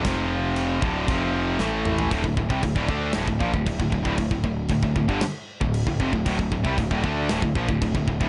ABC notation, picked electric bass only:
X:1
M:4/4
L:1/16
Q:1/4=116
K:Dm
V:1 name="Picked electric bass" clef=bass
F,,,6 D,,,2 F,,,4 A,,,4 | D,,, D,,, D,,, C,, D,,, D,,, D,,2 D,,, D,,, B,,, D,,, D,,, D,,, D,,, D,,, | D,,, D,,, D,,,2 D,,, D,,, D,,, G,,, z3 D,,,2 D,,, F,,, D,,, | D,,, D,,, D,,, C,, D,,, D,,, D,,2 D,,, D,,, B,,, D,,, D,,, D,,, D,,, D,,, |]